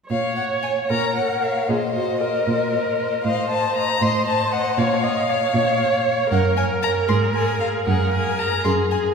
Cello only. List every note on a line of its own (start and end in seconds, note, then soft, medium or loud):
0.10 0.78 A#2 soft
0.90 1.57 A#2 medium
1.69 2.35 A#2 medium
2.46 3.13 A#2 medium
3.24 3.90 A2 medium
4.01 4.66 A2 medium
4.78 5.42 A#2 medium
5.54 6.19 A#2 medium
6.31 6.97 F#2 medium
7.09 7.75 G#2 medium
7.87 8.53 F#2 medium
8.65 9.14 F#2 medium